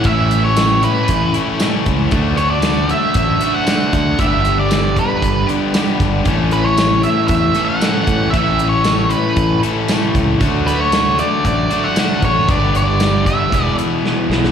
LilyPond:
<<
  \new Staff \with { instrumentName = "Lead electric guitar" } { \time 4/4 \key a \mixolydian \tempo 4 = 116 e''8. cis''8. b'4 r4. | r8 cis''16 d''8. e''8 e''8. fis''8. fis''8 | e''8. d''8. b'4 r4. | r8 b'16 cis''8. e''8 e''8. fis''8. fis''8 |
e''8. cis''8. b'4 r4. | r8 b'16 cis''8. d''8 d''8. fis''8. cis''8 | d''8 d''4 e''4 r4. | }
  \new Staff \with { instrumentName = "Distorted electric guitar" } { \time 4/4 \key a \mixolydian <a, e a cis' e'>4. <a, e a cis' e'>2~ <a, e a cis' e'>8 | <d fis a d'>4. <d fis a d'>2~ <d fis a d'>8 | <g, d g b d'>4. <g, d g b d'>2~ <g, d g b d'>8 | <a, e a cis' e'>4. <a, e a cis' e'>2~ <a, e a cis' e'>8 |
<a, e a cis' e'>4. <a, e a cis' e'>2~ <a, e a cis' e'>8 | <d fis a d'>4. <d fis a d'>2~ <d fis a d'>8 | <g, d g b d'>4. <g, d g b d'>8 <e gis b e'>4. <e gis b e'>8 | }
  \new Staff \with { instrumentName = "Overdriven electric guitar" } { \time 4/4 \key a \mixolydian <a, e a cis' e'>2~ <a, e a cis' e'>8 <a, e a cis' e'>8 <a, e a cis' e'>4 | <d a d' fis'>2~ <d a d' fis'>8 <d a d' fis'>8 <d a d' fis'>4 | <g, d g b d' g'>2~ <g, d g b d' g'>8 <g, d g b d' g'>8 <g, d g b d' g'>4 | <a, e a cis' a'>2~ <a, e a cis' a'>8 <a, e a cis' a'>8 <a, e a cis' a'>4 |
<a, e a cis' a'>2~ <a, e a cis' a'>8 <a, e a cis' a'>8 <a, e a cis' a'>4 | <d a d' fis'>2~ <d a d' fis'>8 <d a d' fis'>8 <d a d' fis'>4 | <g, d g b d' g'>2 <e, b, e b e' gis'>2 | }
  \new Staff \with { instrumentName = "Fingered electric bass" } { \clef bass \time 4/4 \key a \mixolydian a,,2 a,,8 r4 cis,8 | d,2 a,,8 r4 d,8 | g,,2 g,,8 r4 g,,8 | a,,2 e,8 r4 a,8 |
a,,2 a,,8 r4 cis,8 | d,2 a,,8 r4 a,,8 | g,,2 e,,8 r4 b,,8 | }
  \new DrumStaff \with { instrumentName = "Drums" } \drummode { \time 4/4 <hh bd>8 hh8 <hh sn tamb>8 hh8 <hh bd>8 hh8 <hh sn tamb>8 <hh bd>8 | <hh bd>8 hh8 <hh sn tamb>8 hh8 <hh bd>8 hh8 <hh sn tamb>8 <hh bd>8 | <hh bd>8 hh8 <hh sn tamb>8 <hh bd>8 <hh bd>8 hh8 <hh sn tamb>8 <hh bd>8 | <hh bd>8 hh8 <hh sn tamb>8 hh8 <hh bd>8 hh8 <hh sn tamb>8 <hh bd>8 |
<hh bd>8 hh8 <hh sn tamb>8 hh8 <hh bd>8 hh8 <hh sn tamb>8 <hh bd>8 | <hh bd>8 hh8 <hh sn tamb>8 hh8 <hh bd>8 hh8 <hh sn tamb>8 <hh bd>8 | <hh bd>8 hh8 <hh sn tamb>8 <hh bd>8 <hh bd>8 hh8 sn8 sn16 sn16 | }
>>